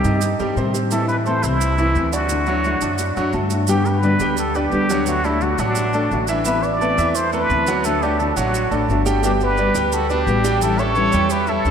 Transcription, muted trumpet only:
0.00 0.40 G4 medium
0.92 1.08 A4 loud
1.08 1.16 B4 medium
1.26 1.45 C5 medium
1.43 2.15 E4 loud
2.13 3.52 F#4 medium
3.70 3.88 G4 medium
3.87 4.38 B4 medium
4.39 4.57 A4 medium
4.56 5.10 G4 loud
5.08 5.27 F#4 loud
5.25 5.44 E4 medium
5.42 5.61 F#4 medium
5.60 6.29 D4 loud
6.46 6.64 B4 loud
6.63 7.17 D5 loud
7.15 7.32 C5 loud
7.33 7.87 B4 loud
7.85 8.04 A4 loud
8.02 8.21 G4 medium
8.20 8.39 A4 medium
8.37 8.79 F#4 medium
9.25 9.32 G4 medium
9.43 9.95 B4 medium
9.94 10.10 A4 medium
10.12 10.64 G4 medium
10.63 10.82 A4 loud
10.80 11.34 C#5 loud
11.32 11.51 B4 medium
11.49 11.71 A4 loud

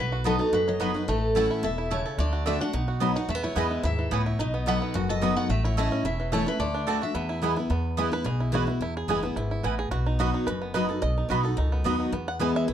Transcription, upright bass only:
0.00 0.36 B1 medium
0.52 0.91 F#1 medium
1.08 1.47 A1 medium
1.63 2.02 E1 medium
2.18 2.57 D2 medium
2.73 3.12 B1 medium
3.28 3.48 E2 medium
3.56 3.79 E2 medium
3.84 4.07 D#2 medium
4.11 4.35 C#2 medium
4.39 4.78 B1 medium
4.95 5.33 F#1 medium
5.49 5.88 A1 loud
6.04 6.43 E1 medium
6.59 6.98 D2 medium
7.15 7.53 E2 medium
7.70 8.09 E2 medium
8.26 8.64 B1 medium
8.81 9.00 E2 medium
9.08 9.32 F#1 medium
9.36 9.60 G#1 medium
9.64 9.87 A1 medium
9.91 10.30 B1 medium
10.47 10.85 F#1 medium
11.02 11.22 B1 medium
11.30 11.53 B1 medium
11.58 11.81 C#2 medium
11.85 12.09 D#2 medium
12.12 12.51 E2 loud
12.68 12.73 B1 medium

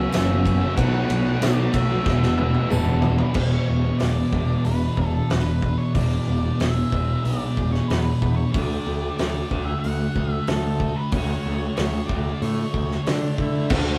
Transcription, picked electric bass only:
0.15 0.63 F#1 loud
0.78 1.02 B1 medium
1.10 1.34 B1 medium
1.41 1.66 B1 loud
1.74 1.99 B1 medium
2.06 2.55 E1 medium
2.71 3.21 E1 medium
3.35 3.57 E1 loud
3.69 3.90 E1 medium
4.01 4.23 E1 medium
4.32 4.54 E1 medium
4.65 4.87 E1 medium
4.97 5.19 E1 medium
5.31 5.74 E1 medium
5.95 6.17 E1 medium
6.28 6.49 E1 medium
6.60 6.82 E1 medium
6.92 7.14 E1 medium
7.25 7.47 B1 medium
7.58 7.79 E1 medium
7.90 8.12 E2 medium
8.22 8.44 E2 medium
8.54 8.76 D2 medium
8.87 9.08 D2 medium
9.20 9.41 D2 medium
9.51 9.73 D2 medium
9.85 10.06 D2 medium
10.15 10.37 D2 medium
10.49 10.92 D2 medium
11.12 11.34 D2 medium
11.46 11.67 D2 medium
11.78 11.99 D2 medium
12.09 12.31 D2 medium
12.42 12.63 A2 medium
12.74 12.96 D2 medium
13.07 13.28 D3 medium
13.38 13.72 D3 medium
13.71 13.95 D2 loud

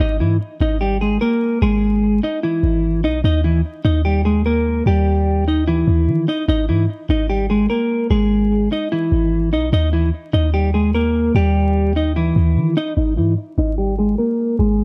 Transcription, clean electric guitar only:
0.00 0.15 D#4 loud
0.00 0.16 D#5 medium
0.20 0.36 E3 medium
0.20 0.36 E4 medium
0.61 0.77 D#4 medium
0.61 0.77 D#5 medium
0.81 0.97 G3 medium
0.81 0.96 G4 medium
1.01 1.17 G#3 medium
1.01 1.17 G#4 medium
1.21 1.60 A#3 medium
1.21 1.59 A#4 medium
1.62 2.20 G#3 medium
1.62 2.19 G#4 loud
2.23 2.39 D#4 medium
2.23 2.39 D#5 medium
2.43 3.01 E3 medium
2.43 3.00 E4 medium
3.04 3.20 D#4 medium
3.04 3.20 D#5 medium
3.24 3.40 D#4 loud
3.24 3.40 D#5 medium
3.44 3.60 E3 medium
3.44 3.60 E4 medium
3.85 4.00 D#4 medium
3.85 4.01 D#5 medium
4.05 4.21 G3 medium
4.05 4.21 G4 medium
4.25 4.41 G#3 medium
4.25 4.41 G#4 medium
4.46 4.84 A#3 medium
4.46 4.84 A#4 medium
4.87 5.44 G3 medium
4.87 5.44 G4 loud
5.48 5.63 D#4 medium
5.48 5.63 D#5 medium
5.67 6.25 E3 medium
5.67 6.25 E4 medium
6.28 6.44 D#4 medium
6.28 6.44 D#5 medium
6.49 6.64 D#4 loud
6.49 6.65 D#5 medium
6.69 6.85 E3 medium
6.69 6.84 E4 medium
7.10 7.25 D#4 medium
7.10 7.26 D#5 medium
7.29 7.46 G3 medium
7.29 7.45 G4 medium
7.50 7.66 G#3 medium
7.50 7.65 G#4 medium
7.70 8.08 A#3 medium
7.70 8.08 A#4 medium
8.11 8.68 G#3 medium
8.11 8.68 G#4 loud
8.72 8.87 D#4 medium
8.72 8.88 D#5 medium
8.92 9.49 E3 medium
8.92 9.49 E4 medium
9.53 9.68 D#4 medium
9.53 9.69 D#5 medium
9.73 9.89 D#4 loud
9.73 9.89 D#5 medium
9.93 10.09 E3 medium
9.93 10.09 E4 medium
10.33 10.49 D#4 medium
10.33 10.50 D#5 medium
10.54 10.70 G3 medium
10.54 10.69 G4 medium
10.74 10.90 G#3 medium
10.74 10.90 G#4 medium
10.94 11.33 A#3 medium
10.94 11.32 A#4 medium
11.36 11.93 G3 medium
11.36 11.92 G4 loud
11.96 12.12 D#4 medium
11.96 12.12 D#5 medium
12.16 12.74 E3 medium
12.16 12.73 E4 medium
12.77 12.92 D#4 medium
12.77 12.93 D#5 medium
12.97 13.13 D#4 loud
13.17 13.33 E3 medium
13.17 13.33 E4 medium
13.58 13.74 D#4 medium
13.58 13.74 D#5 medium
13.78 13.94 G3 medium
13.78 13.94 G4 medium
13.99 14.15 G#3 medium
13.99 14.14 G#4 medium
14.18 14.57 A#3 medium
14.18 14.57 A#4 medium
14.59 14.84 G#3 medium
14.59 14.84 G#4 loud

